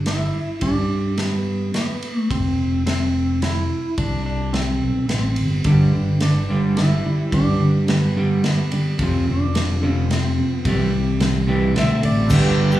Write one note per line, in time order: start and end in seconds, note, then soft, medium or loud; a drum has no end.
0.00 0.31 G1 medium
0.06 0.62 E4 medium
0.06 snare medium
0.06 ride soft
0.61 1.71 G2 medium
0.61 1.18 D4 medium
0.61 kick medium
0.61 ride medium
1.18 1.73 B3 medium
1.18 snare medium
1.18 ride medium
1.74 2.19 B3 medium
1.74 snare medium
1.74 ride medium
2.02 ride soft
2.19 2.31 A3 medium
2.31 2.57 F1 medium
2.31 2.85 C4 medium
2.31 kick medium
2.31 ride medium
2.59 3.67 F1 medium
2.86 3.44 C4 medium
2.86 snare medium
2.86 ride medium
3.42 3.95 E4 medium
3.42 snare medium
3.42 ride medium
3.98 4.78 C2 medium
3.98 4.25 D4 medium
3.98 kick medium
3.98 ride medium
4.26 4.55 D4 medium
4.53 5.07 C4 medium
4.53 snare medium
4.53 ride soft
4.83 5.08 B1 medium
5.09 5.35 A1 medium
5.09 5.51 C4 medium
5.09 snare medium
5.09 ride medium
5.36 5.64 G1 medium
5.36 ride soft
5.51 5.65 B3 medium
5.64 5.91 G1 medium
5.64 5.92 G2 medium
5.64 6.22 G2 medium
5.64 5.92 D3 medium
5.64 6.22 D3 medium
5.64 6.19 G3 medium
5.64 5.93 G3 medium
5.64 6.20 B3 medium
5.64 6.21 D4 medium
5.64 6.21 G4 medium
5.64 kick medium
5.64 ride medium
5.94 7.01 G1 medium
5.94 6.19 G2 medium
5.94 6.19 D3 medium
6.20 6.47 G2 medium
6.20 6.48 D3 medium
6.20 6.75 G3 soft
6.20 6.76 B3 medium
6.20 6.76 D4 medium
6.20 6.77 G4 medium
6.20 snare medium
6.20 ride medium
6.49 6.75 G2 medium
6.49 6.76 D3 medium
6.49 6.76 G3 medium
6.76 7.03 G2 medium
6.76 7.03 D3 medium
6.76 7.04 G3 soft
6.76 7.04 B3 soft
6.76 7.04 D4 soft
6.76 7.33 E4 medium
6.76 7.03 G4 soft
6.76 snare medium
6.76 ride medium
7.04 7.31 G2 soft
7.04 7.31 D3 medium
7.04 7.33 G3 soft
7.04 7.33 B3 soft
7.04 7.33 D4 soft
7.04 7.32 G4 soft
7.32 7.88 G2 medium
7.32 8.40 G2 medium
7.32 7.58 G2 medium
7.32 7.89 D3 medium
7.32 7.58 D3 medium
7.32 7.87 G3 medium
7.32 7.88 B3 medium
7.32 7.89 D4 medium
7.32 7.89 G4 medium
7.32 kick medium
7.32 ride medium
7.60 7.85 G2 medium
7.60 7.85 D3 medium
7.88 8.14 G2 medium
7.88 8.14 D3 medium
7.88 8.42 G3 soft
7.88 8.42 B3 soft
7.88 8.41 B3 medium
7.88 8.43 D4 medium
7.88 8.43 G4 medium
7.88 snare medium
7.88 ride medium
8.17 8.43 G2 medium
8.17 8.43 D3 medium
8.17 8.43 G3 medium
8.43 8.69 G2 medium
8.43 8.70 D3 medium
8.43 8.71 G3 soft
8.43 8.71 B3 soft
8.43 9.03 B3 medium
8.43 8.70 D4 soft
8.43 8.70 G4 soft
8.43 snare medium
8.43 ride soft
8.71 8.97 G2 medium
8.71 8.98 D3 medium
8.71 8.98 G3 soft
8.71 8.98 B3 soft
8.71 8.99 D4 soft
8.71 8.99 G4 soft
8.71 ride soft
8.98 9.25 F1 medium
8.98 9.26 F2 medium
8.98 9.26 C3 medium
8.98 9.53 F3 medium
8.98 9.55 C4 medium
8.98 9.54 F4 medium
8.98 9.54 A4 medium
8.98 kick medium
8.98 ride medium
9.02 9.27 F3 medium
9.02 9.30 C4 medium
9.28 10.35 F1 medium
9.28 9.53 F2 medium
9.28 9.53 C3 medium
9.28 9.92 D4 medium
9.54 9.80 F2 medium
9.54 9.81 C3 medium
9.54 9.82 F3 medium
9.54 9.83 C4 medium
9.54 9.81 F4 medium
9.54 9.80 A4 medium
9.54 snare medium
9.54 ride medium
9.81 10.09 F2 medium
9.81 10.09 C3 medium
9.81 10.10 F3 medium
9.81 10.08 C4 soft
9.81 10.09 F4 soft
9.81 10.09 A4 soft
9.92 10.13 C4 medium
10.09 10.36 F2 medium
10.09 10.36 C3 medium
10.09 10.65 F3 soft
10.09 10.64 C4 soft
10.09 10.65 F4 medium
10.09 10.66 A4 medium
10.09 snare medium
10.09 ride medium
10.13 10.54 C4 medium
10.38 10.63 F2 medium
10.38 10.63 C3 medium
10.54 10.69 B3 medium
10.65 11.72 C2 medium
10.65 11.21 C3 medium
10.65 10.92 C3 medium
10.65 10.91 E3 medium
10.65 11.19 G3 medium
10.65 10.92 G3 medium
10.65 11.20 C4 medium
10.65 11.20 E4 medium
10.65 11.21 G4 medium
10.65 kick medium
10.65 ride medium
10.69 11.74 G3 medium
10.92 11.18 C3 medium
10.92 11.18 E3 medium
11.20 11.46 C3 medium
11.20 11.46 E3 medium
11.20 11.48 G3 medium
11.20 11.48 C4 medium
11.20 11.48 E4 medium
11.20 11.46 G4 medium
11.20 snare medium
11.20 ride medium
11.47 11.74 C3 medium
11.47 11.75 E3 medium
11.47 11.75 G3 medium
11.47 11.75 C4 soft
11.47 11.76 E4 soft
11.47 11.76 G4 soft
11.75 12.01 B1 medium
11.75 12.02 D3 medium
11.75 12.04 F#3 medium
11.75 12.03 A3 medium
11.75 12.03 C4 medium
11.75 12.03 C4 loud
11.75 12.02 D4 medium
11.75 12.01 A4 medium
11.75 12.06 E5 medium
11.75 snare medium
11.75 ride medium
12.02 12.29 A1 medium
12.02 12.29 D3 medium
12.02 12.23 G3 medium
12.02 12.24 A3 medium
12.02 12.29 A3 medium
12.02 12.30 C4 soft
12.02 12.29 D4 soft
12.02 12.31 A4 soft
12.02 12.76 D5 medium
12.02 ride medium
12.07 12.26 B3 medium
12.07 12.27 C4 medium
12.13 12.29 D4 medium
12.13 12.30 E4 medium
12.18 12.31 F4 medium
12.18 12.30 G4 medium
12.23 12.34 A4 medium
12.23 12.36 B4 medium
12.29 12.80 G1 loud
12.29 12.80 G2 medium
12.29 12.80 D3 medium
12.29 12.80 D3 loud
12.29 12.80 G3 medium
12.29 12.74 G3 medium
12.29 12.80 B3 medium
12.29 12.75 B3 medium
12.29 12.74 B3 medium
12.29 12.80 B3 medium
12.29 12.80 D4 medium
12.29 12.75 D4 medium
12.29 12.80 D4 medium
12.29 12.72 D4 loud
12.29 12.80 G4 medium
12.29 12.75 G4 medium
12.29 12.80 B4 loud
12.29 12.37 C5 medium
12.29 kick loud
12.29 crash loud
12.29 shaker loud
12.33 12.70 G4 loud
12.33 12.75 B4 medium
12.71 12.80 G3 medium
12.71 12.80 B3 medium
12.71 12.80 D4 medium
12.71 12.80 G4 medium
12.71 12.80 B4 medium
12.71 shaker medium